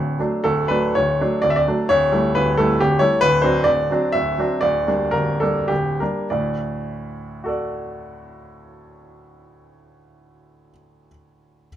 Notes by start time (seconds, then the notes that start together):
Already playing: D1 D2
0.19 F#3 A3 D4
0.44 D1 D2 A4
0.68 F#3 A3 D4 B4
0.95 D1 D2 C#5
1.21 F#3 A3 D4
1.42 D1 D2 D5
1.50 E5
1.56 D5
1.68 F#3 A3 D4
1.89 D1 D2 C#5
2.12 G3 A3 E4
2.35 D1 D2 B4
2.57 G3 A3 E4 A4
2.80 D1 D2 G4
2.99 G3 A3 E4 C#5
3.21 D1 D2 B4
3.42 F#3 C4 D4 C5
3.64 D1 D2 D5
3.90 F#3 C4 D4
4.12 D1 D2 E5
4.38 F#3 C4 D4
4.61 D1 D2 D5
4.88 G3 A#3 D4
5.11 D1 D2 A#4
5.40 G3 A#3 D4 A4
5.68 D1 D2 G4
6.00 G3 A#3 D4 A#4
6.30 D2 A2 D5
7.44 F#4 A4
7.48 D5